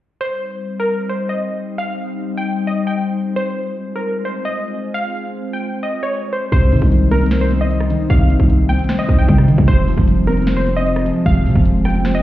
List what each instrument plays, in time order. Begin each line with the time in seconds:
0.21 ambient pad G3 C4 D#4 C5, synth pluck C5
0.80 synth pluck A#4
1.09 synth pluck C5
1.29 synth pluck D#5
1.78 synth pluck F5
2.37 synth pluck G5
2.67 synth pluck D#5
2.87 synth pluck G5
3.36 ambient pad G#3 C4 F4, synth pluck C5
3.96 synth pluck A#4
4.25 synth pluck C5
4.45 synth pluck D#5
4.94 synth pluck F5
5.53 synth pluck G5
5.83 synth pluck D#5
6.03 synth pluck C#5
6.33 synth pluck C5
6.52 808-style bass C2, felt piano C3, ambient pad G3 C4 D#4 C5, synth pluck C5, kick, closed hi-hat
6.72 808-style bass C3, felt piano D#3, open hi-hat
6.82 808-style bass C2, kick
6.92 closed hi-hat
7.11 felt piano C4, synth pluck A#4, closed hi-hat
7.16 closed hi-hat
7.21 closed hi-hat
7.26 closed hi-hat
7.31 felt piano C5, snare, closed hi-hat
7.41 synth pluck C5
7.51 felt piano C4, closed hi-hat
7.61 synth pluck D#5
7.71 closed hi-hat
7.80 cross-stick
7.90 felt piano D#3, closed hi-hat
8.10 808-style bass C2, felt piano C3, synth pluck F5, kick, closed hi-hat
8.30 felt piano D#3, closed hi-hat
8.40 808-style bass C2, kick
8.50 closed hi-hat
8.69 felt piano C4, synth pluck G5, closed hi-hat
8.74 closed hi-hat
8.79 closed hi-hat
8.84 closed hi-hat
8.89 felt piano C5, snare, closed hi-hat
8.99 synth pluck D#5
9.09 808-style bass C2, felt piano C4, kick, closed hi-hat
9.19 synth pluck G5
9.28 808-style bass C3, kick, closed hi-hat
9.38 cross-stick
9.48 felt piano D#3, 808-style bass D#3, closed hi-hat
9.58 808-style bass C3, kick
9.68 808-style bass F1, felt piano C3, ambient pad G#3 F4 C5, synth pluck C5, kick, closed hi-hat
9.88 felt piano F3, open hi-hat
9.98 808-style bass F1, kick
10.08 closed hi-hat
10.27 felt piano C4, synth pluck A#4, closed hi-hat
10.32 closed hi-hat
10.37 closed hi-hat
10.42 closed hi-hat
10.47 felt piano C5, snare, closed hi-hat
10.57 synth pluck C5
10.67 felt piano C4, closed hi-hat
10.77 synth pluck D#5
10.87 closed hi-hat
10.96 cross-stick
11.06 felt piano F3, closed hi-hat
11.26 808-style bass F1, felt piano C3, synth pluck F5, kick, closed hi-hat
11.46 808-style bass C3, felt piano F3, open hi-hat
11.55 808-style bass F1, kick
11.65 closed hi-hat
11.85 felt piano C4, synth pluck G5, cross-stick, closed hi-hat
11.90 closed hi-hat
11.95 closed hi-hat
12.00 closed hi-hat
12.05 felt piano C5, snare, closed hi-hat
12.15 synth pluck D#5